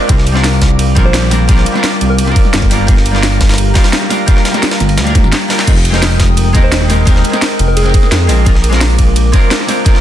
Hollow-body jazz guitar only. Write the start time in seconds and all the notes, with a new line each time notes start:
0.08 G3 C4 D4 A#4
0.32 G3 C4 D4
0.37 F4 A#4
0.95 G3 C4 D4 F4 A#4
1.30 G3 C4 D4 F4 A#4
1.48 G3 C4 D4 F4 A#4
1.72 G3 C4 D4
1.77 F4 A#4
2.24 G3 C4 D4
2.30 F4 A#4
2.69 G3 A#3 D4 F4 A#4
2.87 G3 A#3 D4 A#4
3.11 G3 A#3 D4
3.16 F4 A#4
3.74 G3 A#3 D4 F4 A#4
4.09 G3 A#3 D4 F4 A#4
4.26 G3 A#3 D4 F4 A#4
4.51 G3 A#3 D4
4.56 F4 A#4
5.03 G3 A#3 D4
5.08 F4 A#4
5.48 G3 A#3 D4 F4 A#4
5.66 G#3 C4 D#4 A#4
5.90 G#3 C4 D#4
5.95 G4 A#4
6.53 G#3 C4 D#4 G4 A#4
6.88 G#3 C4 D#4 G4 A#4
7.05 G#3 C4 D#4 G4 A#4
7.30 G#3 C4 D#4
7.37 A#4
7.82 G#3 C4 D#4
7.87 A#4 G5
8.27 G#3 C4 D4 F4 A#4
8.45 G#3 C4 D4 F4 A#4
8.69 G#3 C4 D4
8.75 F4 A#4
9.32 G#3 C4 D4 F4 A#4
9.67 G#3 C4 D4 F4 A#4
9.85 G#3 C4 D4 F4 A#4